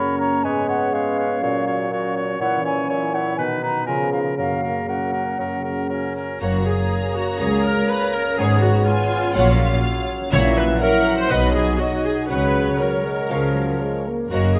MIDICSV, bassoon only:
0, 0, Header, 1, 2, 480
1, 0, Start_track
1, 0, Key_signature, 6, "major"
1, 0, Tempo, 490998
1, 432, Time_signature, 4, 2, 24, 8
1, 3792, Tempo, 504202
1, 7152, Tempo, 487805
1, 11472, Tempo, 502092
1, 14145, End_track
2, 0, Start_track
2, 0, Title_t, "Bassoon"
2, 0, Program_c, 0, 70
2, 0, Note_on_c, 0, 54, 51
2, 380, Note_off_c, 0, 54, 0
2, 434, Note_on_c, 0, 56, 51
2, 857, Note_off_c, 0, 56, 0
2, 906, Note_on_c, 0, 56, 56
2, 1336, Note_off_c, 0, 56, 0
2, 1396, Note_on_c, 0, 46, 57
2, 1820, Note_off_c, 0, 46, 0
2, 1864, Note_on_c, 0, 46, 58
2, 2291, Note_off_c, 0, 46, 0
2, 2344, Note_on_c, 0, 46, 60
2, 2770, Note_off_c, 0, 46, 0
2, 2829, Note_on_c, 0, 46, 60
2, 3252, Note_off_c, 0, 46, 0
2, 3309, Note_on_c, 0, 47, 58
2, 3733, Note_off_c, 0, 47, 0
2, 3793, Note_on_c, 0, 49, 51
2, 4214, Note_off_c, 0, 49, 0
2, 4269, Note_on_c, 0, 54, 43
2, 4694, Note_off_c, 0, 54, 0
2, 4751, Note_on_c, 0, 54, 44
2, 5099, Note_off_c, 0, 54, 0
2, 5226, Note_on_c, 0, 54, 43
2, 5656, Note_off_c, 0, 54, 0
2, 5709, Note_on_c, 0, 54, 37
2, 6142, Note_off_c, 0, 54, 0
2, 6212, Note_on_c, 0, 58, 41
2, 8077, Note_off_c, 0, 58, 0
2, 8114, Note_on_c, 0, 59, 56
2, 9065, Note_on_c, 0, 54, 61
2, 9080, Note_off_c, 0, 59, 0
2, 10012, Note_off_c, 0, 54, 0
2, 10018, Note_on_c, 0, 54, 59
2, 10466, Note_off_c, 0, 54, 0
2, 10504, Note_on_c, 0, 54, 65
2, 10973, Note_off_c, 0, 54, 0
2, 10979, Note_on_c, 0, 54, 54
2, 11458, Note_off_c, 0, 54, 0
2, 11466, Note_on_c, 0, 54, 56
2, 11802, Note_off_c, 0, 54, 0
2, 11944, Note_on_c, 0, 54, 46
2, 12416, Note_off_c, 0, 54, 0
2, 12425, Note_on_c, 0, 54, 51
2, 12908, Note_on_c, 0, 53, 47
2, 12923, Note_off_c, 0, 54, 0
2, 13631, Note_off_c, 0, 53, 0
2, 13872, Note_on_c, 0, 58, 50
2, 14145, Note_off_c, 0, 58, 0
2, 14145, End_track
0, 0, End_of_file